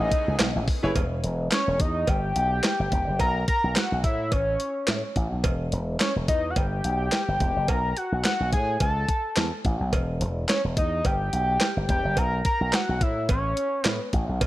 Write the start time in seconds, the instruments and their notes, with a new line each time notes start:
Already playing: analog synth pad C#3 A3 B3 G#4, grand piano E4 G#4 B4 C#5, analog synth lead D#5
0.12 kick, closed hi-hat
0.28 slap bass C#2
0.39 slap bass B1, snare, clap, closed hi-hat, cowbell
0.56 slap bass A1
0.68 kick, open hi-hat
0.83 slap bass F#1, grand piano E4 G#4 B4 C#5
0.96 slap bass E1, kick, closed hi-hat, cowbell
1.24 slap bass E1, closed hi-hat
1.52 analog synth lead C#5, snare, clap, closed hi-hat, cowbell
1.67 slap bass E1
1.80 slap bass E2, analog synth lead D#5, kick, closed hi-hat
2.07 slap bass G1, analog synth lead G5, kick, closed hi-hat, cowbell
2.36 slap bass B1, closed hi-hat
2.63 snare, clap, closed hi-hat, cowbell
2.80 slap bass G1
2.92 slap bass E1, kick, closed hi-hat
3.08 slap bass F#1
3.19 slap bass B1, analog synth lead A#5, kick, closed hi-hat, cowbell
3.48 analog synth lead A#5, kick, closed hi-hat
3.64 slap bass B1
3.76 analog synth lead F#5, snare, clap, closed hi-hat, cowbell
3.92 slap bass B1
4.04 slap bass A2, analog synth lead E5, kick, closed hi-hat
4.32 slap bass A1, analog synth lead C#5, kick, closed hi-hat, cowbell
4.60 closed hi-hat
4.87 slap bass A2, snare, clap, closed hi-hat, cowbell
5.16 slap bass A1, kick, closed hi-hat
5.32 slap bass B1
5.44 slap bass E1, kick, closed hi-hat, cowbell
5.72 slap bass E1, closed hi-hat
6.00 analog synth lead C#5, snare, clap, closed hi-hat, cowbell
6.16 slap bass E1
6.28 slap bass E2, analog synth lead D#5, kick, closed hi-hat
6.50 analog synth lead F#5
6.56 slap bass G1, analog synth lead G5, kick, closed hi-hat, cowbell
6.84 slap bass B1, closed hi-hat
7.12 snare, clap, closed hi-hat, cowbell
7.28 slap bass G1
7.40 slap bass E1, kick, closed hi-hat
7.56 slap bass F#1
7.68 slap bass B1, analog synth lead A#5, kick, closed hi-hat, cowbell
7.97 analog synth lead F#5, closed hi-hat
8.12 slap bass B1
8.24 analog synth lead F#5, snare, clap, closed hi-hat, cowbell
8.40 slap bass B1
8.53 slap bass A2, analog synth lead G#5, kick, closed hi-hat
8.80 slap bass C#2, analog synth lead A5, kick, closed hi-hat, cowbell
9.09 kick, closed hi-hat
9.36 slap bass E2, snare, clap, closed hi-hat, cowbell
9.65 slap bass A1, kick, closed hi-hat
9.80 slap bass B1
9.93 slap bass E1, kick, closed hi-hat, cowbell
10.20 slap bass E1, closed hi-hat
10.49 analog synth lead C#5, snare, clap, closed hi-hat, cowbell
10.64 slap bass E1
10.77 slap bass E2, analog synth lead D#5, kick, closed hi-hat
11.05 slap bass G1, analog synth lead G5, kick, closed hi-hat, cowbell
11.33 slap bass B1, closed hi-hat
11.61 snare, clap, closed hi-hat, cowbell
11.77 slap bass G1
11.89 slap bass E1, analog synth lead G5, kick, closed hi-hat
12.05 slap bass F#1
12.17 slap bass B1, analog synth lead A#5, kick, closed hi-hat, cowbell
12.45 analog synth lead A#5, kick, closed hi-hat
12.61 slap bass B1
12.73 analog synth lead F#5, snare, clap, closed hi-hat, cowbell
12.89 slap bass B1
13.01 slap bass A2, analog synth lead E5, kick, closed hi-hat
13.29 slap bass A1, analog synth lead C#5, kick, closed hi-hat, cowbell
13.57 closed hi-hat
13.85 slap bass A2, analog synth lead B4, snare, clap, closed hi-hat, cowbell
14.13 slap bass A1, kick, closed hi-hat
14.29 slap bass B1
14.41 slap bass E1, kick, closed hi-hat, cowbell